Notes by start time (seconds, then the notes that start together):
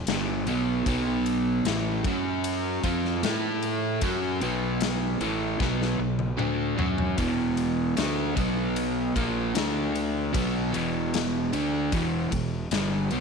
0.07 G1 G2 D3 G3, snare, ride
0.46 B1 B2 F#3 B3, ride
0.86 B1 B2 F#3 B3, kick, ride
1.26 ride
1.65 A1 A2 E3 A3, snare, ride
2.04 F#2 F#3 C#4 F#4, kick, ride
2.44 ride
2.83 F2 F3 C4 F4, kick, ride
3.05 snare
3.23 A2 A3 E4 A4, snare, ride
3.62 ride
4.01 F#2 F#3 C#4 F#4, kick, ride
4.40 B1 B2 F#3 B3, ride
4.81 snare, ride
5.20 A1 A2 E3 A3, ride
5.60 B1 B2 F#3 B3, kick, snare
5.82 snare
5.99 B1 B2 F#3
6.19 high tom
6.37 D2 D3 A3 D4, mid tom
6.78 F#2 F#3 C#4 F#4, floor tom
6.98 floor tom
7.18 E1 E2 B2 E3, kick, ride
7.57 ride
7.97 D2 D3 A3 D4, snare, ride
8.36 B1 B2 F#3 B3, kick, ride
8.76 ride
9.15 A#1 A#2 F3 A#3, kick, ride
9.55 D2 D3 A3 D4, snare, ride
9.95 ride
10.33 B1 B2 F#3 B3, kick, ride
10.72 E1 E2 B2 E3, ride
11.14 snare, ride
11.53 D2 D3 A3 D4, ride
11.92 E1 E2 B2 E3, kick, ride
12.31 E1 E2 B2, kick, ride
12.71 G1 G2 D3 G3, snare, ride
13.11 B1 B2 F#3 B3, ride